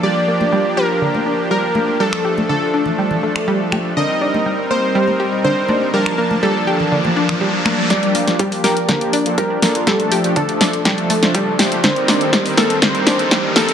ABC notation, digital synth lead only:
X:1
M:4/4
L:1/8
Q:1/4=122
K:Dphr
V:1 name="Digital synth lead"
d3 B3 B2 | A2 A2 z4 | e3 c3 c2 | B2 A2 z4 |
d3 B3 B2 | A2 A2 z4 | c3 A c3 A |]